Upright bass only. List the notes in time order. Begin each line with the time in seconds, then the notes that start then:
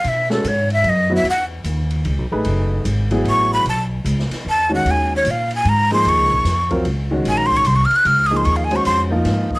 0.04 B2
0.44 G#2
0.84 F#2
1.23 E2
1.64 D#2
2.05 C#2
2.18 B1
2.32 A1
2.46 F#1
2.85 G#1
3.25 A1
3.64 B1
4.05 C#2
4.30 muted upright bass stroke
4.45 E2
4.85 D#2
5.25 A#2
5.65 G#2
6.05 D#2
6.18 C#2
6.31 A#1
6.44 F2
6.85 C#2
7.25 A#1
7.65 C2
7.91 muted upright bass stroke
8.05 C#2
8.46 D#2
8.85 F2
9.25 G#2
9.51 muted upright bass stroke